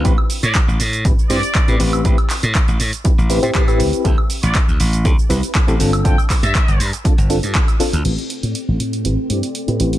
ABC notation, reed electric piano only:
X:1
M:4/4
L:1/16
Q:1/4=120
K:Am
V:1 name="Reed electric piano"
[CEGB] z6 z [CEGB] z [CEGc] z2 [CEGB] [CEGB]2 | [CEGB] z6 z [CEGB] z [CEGB] [CEGc] G [CEGB]3 | [CEGA] z6 z [CEGA] z [CEGB] z2 [CEGA] [CDFA]2 | [CDFA] z6 z [CDFA] z [CDFA] z3 [CDFA] z |
[CEGB] z6 z [CEGB] z [CEGc] z2 [CEGB] [CEGB]2 |]